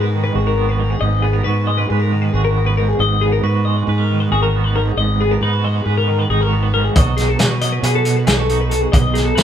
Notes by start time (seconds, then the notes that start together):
Already playing: G#2 G#3 B3 F#4 B4
0.01 A#4
0.13 D#3
0.24 B4
0.35 G#1 F#4 G#4
0.47 A#4
0.57 B3
0.69 B4
0.79 G#2 A#4
0.90 G#4
1.00 G#1 G#2 D#5
1.22 B3 G#4
1.33 A#4
1.44 G#2 F#4 B4
1.67 G#3 D#5
1.78 B4
1.89 G#2 G#4 B4
2.00 A#4
2.12 D#3
2.22 B4
2.33 G#1 F#4 G#4
2.45 A#4
2.57 B3
2.66 B4
2.77 G#2 A#4
2.88 G#4
2.99 G#1 G#2 D#5
3.21 B3 G#4
3.32 A#4
3.43 G#2 F#4 B4
3.65 G#3 D#5
3.77 B4
3.87 G#2 G#4 B4
3.98 A#4
4.11 D#3
4.20 B4
4.32 G#1 F#4 G#4
4.43 A#4
4.55 B3
4.64 B4
4.76 G#2 A#4
4.87 G#4
4.97 G#1 G#2 D#5
5.21 B3 G#4
5.31 A#4
5.41 G#2 D#4 B4
5.53 F#4
5.64 G#3 D#5
5.75 B4
5.86 G#2 G#4 B4
5.98 A#4
6.08 D#3
6.19 B4
6.30 G#1 D#4 G#4
6.41 F#4 A#4
6.53 B3
6.63 B4
6.74 G#2 A#4
6.84 G#4
6.96 B1 B2 F#3 D#4 F#4 D#5, kick, closed hi-hat
7.00 A4
7.17 D#4 G#4, snare, closed hi-hat
7.28 A4
7.39 B2 D#4 B4, snare, closed hi-hat
7.51 F#4
7.61 F#3 D#5, closed hi-hat
7.72 B4
7.83 B2 G#4 B4, closed hi-hat
7.95 A4
8.05 B2, closed hi-hat
8.17 B4
8.27 B1 D#4 G#4, snare, closed hi-hat
8.38 F#4 A4
8.49 D#4, closed hi-hat
8.61 B4
8.70 B2 A4, closed hi-hat
8.81 G#4
8.92 B1 B2 D#5, kick, closed hi-hat
9.14 D#4 G#4, snare, closed hi-hat
9.25 A4
9.35 B2 D#4 B4, snare, closed hi-hat